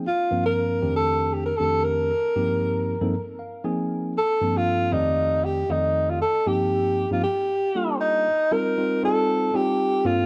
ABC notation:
X:1
M:4/4
L:1/16
Q:"Swing 16ths" 1/4=117
K:Fmix
V:1 name="Alto saxophone"
F3 B4 A3 G B A2 B2- | B8- B2 z6 | A3 F3 E4 G2 E3 F | A2 G4- G F G6 E2- |
E2 B4 A4 G4 F2 |]
V:2 name="Tine electric piano"
z2 [G,,F,B,CDB]4 [F,,E,A,CDG]4- [F,,E,A,CDG] z [F,,E,A,CDG]4 | z2 [G,,F,B,CEG]4 z [G,,F,B,CEA] z2 f2 [F,B,CE_A_a]4 | z2 [G,,F,B,CDA]4 [F,,E,A,CGd]4- [F,,E,A,CGd] z [F,,E,A,CAd]4 | z2 [G,,F,B,CEG]4 z [G,,F,B,CEG] z4 [G,B,DFA]4 |
z2 [G,CEFB]2 [G,CEFB]2 [G,CEFA]4 [G,CEFG]4 [G,,B,CDFA]2 |]